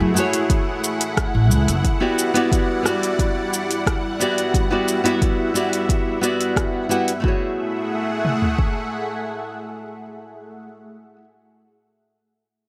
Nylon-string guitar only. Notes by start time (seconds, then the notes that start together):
Already playing: A3 E4 F#4 G#4 E5
0.14 A3 E4 F#4
0.18 G#4 C#5
2.00 B3 E4 F#4 G4 D5
2.34 B3 E4 F#4 G4 D5
2.83 B3 E4 F#4
2.87 G4 D5
4.19 B3 E4 F#4 G4 D5
4.70 B3 E4 F#4 G4 D5
5.04 B3 E4 F#4 G4 E5
5.54 B3 E4 F#4 G4 D5
6.21 B3 E4 F#4 G4 D5
6.89 B3 E4 F#4 G4 F#5
7.20 A3 E4
7.24 F#4 G#4 C#5